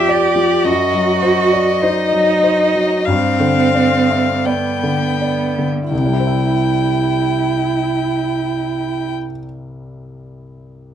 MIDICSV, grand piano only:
0, 0, Header, 1, 2, 480
1, 0, Start_track
1, 0, Key_signature, 0, "major"
1, 0, Tempo, 1145038
1, 282, Time_signature, 4, 2, 24, 8
1, 768, Tempo, 1244813
1, 1248, Tempo, 1376147
1, 1728, Tempo, 1463415
1, 2208, Tempo, 1279318
1, 4094, End_track
2, 0, Start_track
2, 0, Title_t, "Grand piano"
2, 0, Program_c, 0, 0
2, 0, Control_c, 0, 64, 127
2, 0, Note_on_c, 0, 41, 35
2, 0, Note_on_c, 0, 53, 32
2, 0, Note_on_c, 0, 74, 32
2, 0, Note_on_c, 0, 76, 28
2, 36, Note_off_c, 0, 74, 0
2, 36, Note_on_c, 0, 74, 36
2, 110, Note_off_c, 0, 53, 0
2, 149, Note_on_c, 0, 53, 28
2, 229, Note_off_c, 0, 74, 0
2, 260, Note_off_c, 0, 41, 0
2, 270, Note_on_c, 0, 42, 34
2, 275, Note_off_c, 0, 53, 0
2, 291, Control_c, 0, 64, 0
2, 293, Note_off_c, 0, 76, 0
2, 367, Control_c, 0, 64, 127
2, 394, Note_on_c, 0, 54, 35
2, 513, Note_on_c, 0, 72, 34
2, 592, Note_off_c, 0, 54, 0
2, 641, Note_on_c, 0, 74, 32
2, 713, Note_off_c, 0, 72, 0
2, 766, Note_off_c, 0, 74, 0
2, 767, Note_on_c, 0, 72, 34
2, 882, Note_on_c, 0, 54, 29
2, 954, Note_off_c, 0, 72, 0
2, 999, Note_on_c, 0, 72, 32
2, 1074, Note_off_c, 0, 54, 0
2, 1123, Note_on_c, 0, 54, 32
2, 1196, Note_off_c, 0, 72, 0
2, 1227, Note_off_c, 0, 42, 0
2, 1247, Note_on_c, 0, 43, 41
2, 1248, Note_off_c, 0, 54, 0
2, 1256, Control_c, 0, 64, 0
2, 1327, Control_c, 0, 64, 127
2, 1362, Note_on_c, 0, 50, 27
2, 1481, Note_on_c, 0, 74, 32
2, 1553, Note_off_c, 0, 50, 0
2, 1608, Note_on_c, 0, 76, 25
2, 1677, Note_off_c, 0, 74, 0
2, 1731, Note_off_c, 0, 76, 0
2, 1731, Note_on_c, 0, 74, 27
2, 1853, Note_on_c, 0, 50, 26
2, 1928, Note_off_c, 0, 74, 0
2, 1977, Note_on_c, 0, 74, 27
2, 2055, Note_off_c, 0, 50, 0
2, 2099, Note_on_c, 0, 50, 20
2, 2166, Note_off_c, 0, 74, 0
2, 2194, Note_off_c, 0, 43, 0
2, 2207, Note_off_c, 0, 50, 0
2, 2208, Note_on_c, 0, 36, 22
2, 2217, Control_c, 0, 64, 0
2, 2235, Note_on_c, 0, 48, 22
2, 2261, Note_on_c, 0, 55, 21
2, 2282, Control_c, 0, 64, 127
2, 2289, Note_on_c, 0, 64, 21
2, 2313, Note_on_c, 0, 72, 22
2, 2340, Note_on_c, 0, 76, 20
2, 3404, Note_off_c, 0, 36, 0
2, 3431, Note_off_c, 0, 48, 0
2, 3457, Note_off_c, 0, 55, 0
2, 3485, Note_off_c, 0, 64, 0
2, 3509, Note_off_c, 0, 72, 0
2, 3536, Note_off_c, 0, 76, 0
2, 4094, End_track
0, 0, End_of_file